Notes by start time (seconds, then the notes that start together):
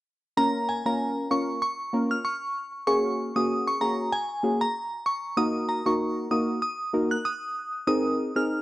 0.37 A#3 C#4 F4 A#4 A#5
0.69 G#5
0.85 A#3 C#4 F4 A#4 A#5
1.31 A#3 C#4 F4 A#4 C#6
1.62 C#6
1.93 A#3 C#4 F4 A#4
2.11 F6
2.25 C#6
2.87 A#3 C#4 F#4 G#4 C#6
3.36 A#3 C#4 F#4 G#4 D#6
3.68 C#6
3.81 A#3 C#4 F#4 G#4 A#5
4.13 G#5
4.43 A#3 C#4 F#4 G#4
4.61 A#5
5.06 C#6
5.37 A#3 D#4 F#4 A#4 D#6
5.69 A#5
5.86 A#3 D#4 F#4 A#4 C#6
6.31 A#3 D#4 F#4 A#4 D#6
6.62 D#6
6.93 A#3 D#4 F#4 A#4
7.11 F#6
7.25 D#6
7.87 C4 D#4 G#4 A#4 D#6
8.36 C4 D#4 G#4 A#4 F6